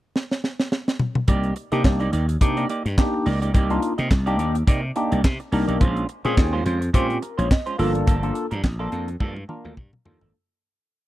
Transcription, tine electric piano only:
1.72 A#3 D4 D#4 G4
2.41 A#3 D4 D#4 G4
2.98 A#3 D4 D#4 G4
3.70 A#3 D4 D#4 F4
4.27 A#3 D4 D#4 G4
4.96 A#3 D4 D#4 G4
5.53 A#3 D4 D#4 A#4
6.25 C4 C#4 F4 G#4
6.94 C4 C#4 F4 G4
7.23 A#4
7.39 C#5
7.51 D#5
7.67 F5
7.79 A#3 D4 F4 A4
8.23 A#3 D4 F4 A4
8.79 A#3 D4 F4 A4
9.49 A#3 D4 F4 A#4
10.05 A#3 D4 F4 A4

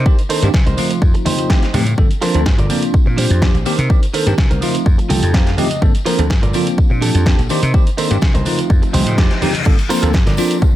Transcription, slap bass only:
0.42 G2
0.54 C3
0.66 C2
1.02 F2
1.74 A2
1.98 G1
2.34 D2
2.46 G2
2.58 G1
2.94 muted slap bass stroke
3.06 A#2
3.30 F2
3.54 A#1
3.66 muted slap bass stroke
3.78 C3
4.26 G2
4.38 C3
4.51 C2
4.86 F2
5.10 C2
5.22 F2
5.82 G1
6.18 D2
6.30 G2
6.43 G1
6.78 muted slap bass stroke
6.90 A#2
7.14 F2
7.38 A#1
7.50 muted slap bass stroke
7.62 C3
8.11 G2
8.22 C3
8.35 C2
8.70 F2
8.94 C2
9.06 A2
9.18 F2
9.66 G1
10.03 D2
10.14 G2
10.27 G1
10.62 muted slap bass stroke

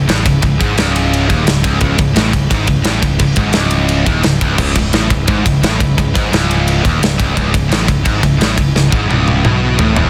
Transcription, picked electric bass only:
0.09 A1
0.26 C#1
0.44 C#1
0.61 G#1
0.79 C#1
1.30 D#1
1.48 C#1
1.64 C#1
1.81 C#1
1.99 C#1
2.17 A1
2.51 G#1
2.68 C#1
2.85 A1
3.03 C#1
3.20 C#1
3.37 G#1
3.55 C#1
4.07 D#1
4.24 C#1
4.41 C#1
4.59 C#1
4.76 C#1
4.93 A1
5.11 C#1
5.28 G#1
5.46 C#1
5.63 A1
5.80 C#1
5.98 C#1
6.15 G#1
6.32 C#1
6.85 D#1
7.02 C#1
7.19 C#1
7.37 C#1
7.54 C#1
7.71 A1
7.89 C#1
8.06 G#1
8.23 C#1
8.40 A1
8.58 C#1
8.75 C#1
8.93 G#1
9.08 C#1
9.45 B1
9.79 A1
9.97 E1

